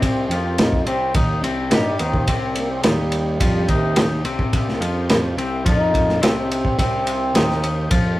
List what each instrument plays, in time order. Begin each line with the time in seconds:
Already playing: picked electric bass C2, clean electric guitar C3 C4, tonewheel organ G4 G5 C6
0.02 trombone C4, kick, ride
0.29 picked electric bass F2, clean electric guitar F3 F4, ride
0.58 trombone D#4, snare, ride
0.73 kick
0.86 picked electric bass C2, clean electric guitar C3 C4, trombone C4, ride
1.14 picked electric bass D#2, clean electric guitar D#3 D#4, kick, ride
1.41 picked electric bass C2, clean electric guitar C3 C4, ride
1.71 picked electric bass G2, clean electric guitar G3 G4, trombone D#4, snare, ride
1.99 picked electric bass D#2, clean electric guitar D#3 D#4, trombone C4, ride
2.14 kick
2.27 picked electric bass C2, clean electric guitar C3 C4, kick, ride
2.55 trombone A#3, ride
2.71 trombone C4
2.83 picked electric bass D#2, clean electric guitar D#3 D#4, trombone G3, snare, ride
3.12 ride
3.40 picked electric bass F2, clean electric guitar F3 F4, kick, ride
3.68 picked electric bass D#2, trombone C3, clean electric guitar D#3 D#4, kick, ride
3.96 snare, ride
4.24 picked electric bass C2, clean electric guitar C3 C4, ride
4.39 kick
4.53 kick, ride
4.69 snare
4.80 picked electric bass F2, clean electric guitar F3 F4, ride
5.09 snare, ride
5.37 picked electric bass C2, clean electric guitar C3 C4, ride
5.65 picked electric bass F2, clean electric guitar F3 F4, trombone D#4, kick, ride
5.94 kick, ride
6.09 snare
6.21 picked electric bass C2, clean electric guitar C3 C4, trombone C4, snare, ride
6.51 trombone C4, ride
6.65 kick
6.78 picked electric bass C2, clean electric guitar C3 C4, trombone C4, kick, ride
7.07 ride
7.34 picked electric bass D#2, clean electric guitar D#3 D#4, snare, ride
7.50 snare
7.64 ride
7.91 picked electric bass F2, clean electric guitar F3 F4, kick, ride